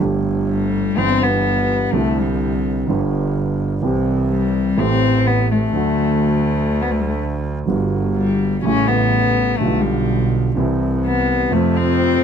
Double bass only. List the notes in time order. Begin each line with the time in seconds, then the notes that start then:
0.00 G1
0.98 G1
1.93 C2
2.90 G1
3.84 C2
4.80 A1
5.74 D2
7.69 G1
8.66 A1
9.61 B1
10.57 C2
11.52 F2